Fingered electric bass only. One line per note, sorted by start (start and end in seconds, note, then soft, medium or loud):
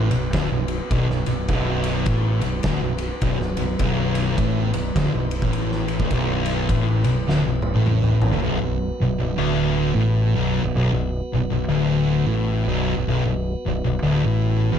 0.11 0.32 B0 medium
0.34 0.50 D1 medium
0.52 0.78 B0 medium
0.91 1.07 B0 loud
1.10 1.25 B0 medium
1.27 1.48 B0 medium
1.49 2.03 B0 loud
2.07 2.39 A1 loud
2.43 2.63 B0 medium
2.64 2.81 D1 medium
2.83 3.09 B0 medium
3.22 3.38 B0 loud
3.41 3.57 B0 medium
3.59 3.79 B0 medium
3.79 4.34 B0 loud
4.38 4.71 A1 loud
4.74 4.95 B0 medium
4.95 5.12 D1 loud
5.13 5.40 B0 medium
5.42 5.96 A1 loud
6.00 6.10 D1 medium
6.11 6.65 B0 loud
6.69 7.02 A1 loud
7.05 7.26 B0 medium
7.28 7.44 D1 medium
7.45 7.72 B0 medium
7.75 8.29 A1 medium
8.33 8.43 D1 medium
8.45 8.60 B0 loud
8.62 8.89 B0 medium
9.02 9.18 B0 medium
9.20 9.36 B0 medium
9.38 9.91 D1 medium
9.95 10.32 A1 loud
10.36 10.63 B0 loud
10.64 10.74 B0 medium
10.75 10.92 B0 loud
10.92 11.20 B0 medium
11.33 11.50 B0 medium
11.50 11.67 B0 medium
11.67 12.22 D1 loud
12.27 12.65 A1 medium
12.67 12.95 B0 loud
12.97 13.07 B0 medium
13.07 13.24 B0 loud
13.26 13.53 B0 medium
13.67 13.83 B0 medium
13.85 14.01 B0 medium
14.02 14.23 D1 loud
14.26 14.69 A1 loud
14.73 14.79 E1 medium